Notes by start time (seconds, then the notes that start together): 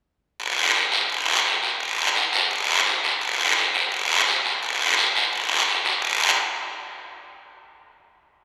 0.40 long guiro
0.75 short guiro
0.92 short guiro
1.10 long guiro
1.45 short guiro
1.63 short guiro
1.80 long guiro
2.15 short guiro
2.33 short guiro
2.51 long guiro
2.86 short guiro
3.04 short guiro
3.21 long guiro
3.57 short guiro
3.74 short guiro
3.92 long guiro
4.27 short guiro
4.45 short guiro
4.63 long guiro
4.97 short guiro
5.15 short guiro
5.33 long guiro
5.68 short guiro
5.85 short guiro
6.02 long guiro